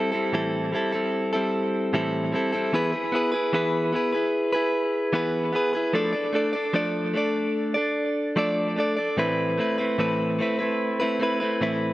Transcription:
Already playing: G3 C4 E4 A4
0.12 G3 C4 E4 A4
0.32 A2 E3 G3 C4 E4 A4
0.72 G3 C4 E4 A4
0.92 G3 C4 E4 A4
1.33 G3 C4 E4 A4
1.93 A2 E3 G3 C4 E4 A4
2.32 G3 C4 E4 A4
2.52 G3 C4 E4 A4
2.73 E3 B3 E4 G#4 B4
2.92 E4 G#4 B4
3.12 B3 E4 G#4 B4
3.32 E4 G#4 B4
3.53 E3 B3 E4 G#4 B4
3.92 B3 E4 G#4 B4
4.13 E4 G#4 B4
4.53 E4 G#4 B4
5.13 E3 B3 E4 G#4 B4
5.53 B3 E4 G#4 B4
5.73 E4 G#4 B4
5.93 F3 A3 D4 A4 D5
6.13 D4 A4 D5
6.33 A3 D4 A4 D5
6.53 D4 A4 D5
6.73 F3 A3 D4 A4 D5
7.14 A3 D4 A4 D5
7.74 D4 A4 D5
8.36 F3 A3 D4 A4 D5
8.76 A3 D4 A4 D5
8.97 D4 A4 D5
9.17 A2 E3 A3 C4 E4 B4
9.57 A3 C4 E4 B4
9.78 A3 C4 E4 B4
9.98 A2 E3 A3 C4 E4 B4
10.39 A3 C4 E4 B4
10.59 A3 C4 E4 B4
11.00 A3 C4 E4 B4
11.20 A3 C4 E4 B4
11.40 A3 C4 E4 B4
11.61 A2 E3 A3 C4 E4 B4

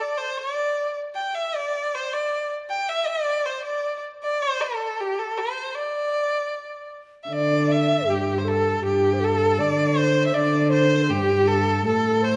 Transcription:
0.01 D5
0.17 C5
0.37 D5
1.15 G5
1.35 E5
1.55 D5
1.95 C5
2.13 D5
2.70 G5
2.89 E5
3.07 D5
3.46 C5
3.65 D5
4.23 D5
4.42 C5
4.61 A4
5.00 G4
5.19 A4
5.38 C5
5.75 D5
7.24 E5
7.29 D3 D5
7.68 E5
8.06 G2 G4
8.38 C5
8.45 A4
8.75 A4
8.82 G2 G4
9.13 C5
9.21 A4
9.59 D3 D5
9.96 C5
10.27 E5
10.33 D3 D5
10.70 C5
11.02 A4
11.09 G2 G4
11.47 A4
11.84 A2 A4
12.22 C5

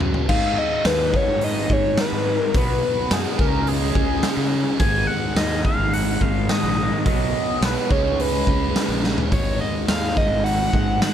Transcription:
Already playing: F#2
0.00 F#2 C#3 F#3, floor tom
0.14 C#3 F#3, floor tom
0.29 G#2 D#3 G#3 F5, kick, crash
0.58 D#5
0.85 D#2 B4, snare, open hi-hat
1.14 C#5, kick
1.28 G#2
1.41 D#5, open hi-hat
1.70 G#2 C#5, kick
1.97 B4, snare, open hi-hat
2.12 G#2
2.38 A#4
2.54 B1 B2 F#3 B3 B4, kick, open hi-hat
3.11 F#2 G#4, snare, open hi-hat
3.38 C#2 C#3 G#3 C#4 A#4, kick
3.67 G#4, open hi-hat
3.95 C#2, kick
4.23 snare, open hi-hat
4.37 C#3
4.79 G#1 G#2 D#3 G#3 G#5, kick, open hi-hat
5.07 F#5
5.35 D#2 D#5, snare, open hi-hat
5.65 F5, kick
5.78 G#1
5.93 F#5, open hi-hat
6.21 G#1 F5, kick
6.49 D#5, snare, open hi-hat
6.63 A#1
7.05 B1 B2 F#3 B3 D#5, kick, open hi-hat
7.61 B1, snare, open hi-hat
7.65 B4
7.90 C#2 C#3 G#3 C#4 C#5, kick
8.20 B4, open hi-hat
8.47 C#2, kick
8.76 snare, open hi-hat
8.88 A#1
9.04 snare
9.18 floor tom
9.32 G#1 G#2 D#3 G#3 C#5, kick, open hi-hat
9.61 D#5
9.88 D#2 F5, snare, open hi-hat
10.17 D#5, kick
10.30 G#1
10.44 F#5, open hi-hat
10.73 G#1, kick
11.01 F#5, snare, open hi-hat

